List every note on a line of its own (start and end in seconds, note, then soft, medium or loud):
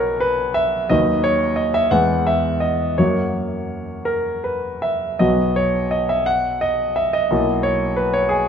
0.00 0.85 B1 soft
0.00 0.86 F#3 soft
0.00 0.85 E4 soft
0.00 0.92 A#4 medium
0.00 0.20 B4 medium
0.00 0.92 C#5 medium
0.00 0.89 D#5 medium
0.20 0.55 B4 medium
0.54 0.89 E5 medium
0.89 1.89 D#2 soft
0.89 1.88 F#3 soft
0.89 1.89 D#4 soft
0.89 1.89 B4 soft
0.89 1.24 D#5 medium
1.24 1.57 C#5 medium
1.56 1.74 D#5 medium
1.74 1.91 E5 medium
1.91 2.95 E2 soft
1.91 2.95 G#3 soft
1.91 2.95 B3 soft
1.91 2.95 B4 soft
1.91 2.26 F#5 medium
2.27 2.62 E5 medium
2.60 2.97 D#5 medium
2.98 5.16 F#2 soft
2.98 5.17 F#3 soft
2.98 5.16 A#3 soft
2.98 5.16 F#4 soft
2.98 4.08 C#5 medium
4.05 4.44 A#4 medium
4.44 4.83 B4 soft
4.82 5.19 E5 medium
5.19 7.27 B1 soft
5.19 7.27 F#3 soft
5.19 7.27 B3 soft
5.19 7.28 F#4 soft
5.19 5.55 D#5 medium
5.56 5.92 C#5 medium
5.91 6.09 D#5 medium
6.09 6.27 E5 medium
6.26 6.62 F#5 medium
6.61 6.97 D#5 medium
6.96 7.14 E5 medium
7.13 7.64 D#5 medium
7.31 8.48 B1 soft
7.31 8.48 F#3 soft
7.31 8.48 A#3 soft
7.31 8.48 E4 soft
7.63 7.97 C#5 medium
7.96 8.13 B4 medium
8.13 8.30 C#5 medium
8.29 8.48 G#4 medium